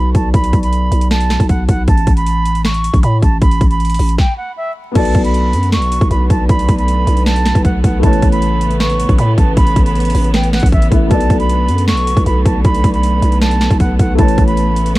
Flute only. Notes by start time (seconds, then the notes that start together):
Already playing: B5
0.14 A5
0.34 B5
0.63 B5
1.11 A5
1.49 F#5
1.68 F#5
1.88 A5
2.17 B5
2.65 C#6
3.03 B5
3.23 A5
3.41 B5
3.70 B5
4.19 G5
4.37 F#5
4.57 E5
4.95 A5
5.25 B5
5.72 C#6
6.11 B5
6.30 A5
6.49 B5
6.78 B5
7.26 A5
7.64 F#5
7.84 F#5
8.03 A5
8.32 B5
8.80 C#6
9.18 B5
9.38 A5
9.56 B5
9.86 B5
10.34 G5
10.53 F#5
10.73 E5
11.11 A5
11.40 B5
11.88 C#6
12.26 B5
12.45 A5
12.64 B5
12.94 B5
13.41 A5
13.80 F#5
13.99 F#5
14.18 A5
14.47 B5
14.96 C#6